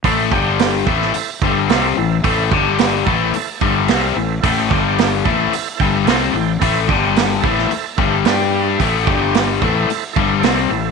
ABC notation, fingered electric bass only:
X:1
M:4/4
L:1/8
Q:1/4=110
K:Am
V:1 name="Fingered electric bass" clef=bass
A,,, G,,,2 A,,, z G,,, C,, A,,, | A,,, G,,,2 A,,, z G,,, C,, A,,, | A,,, G,,,2 A,,, z G,,, C,, A,,, | A,,, G,,,2 A,,, z G,,, G,,2 |
A,,, G,,,2 A,,, z G,,, C,, A,,, |]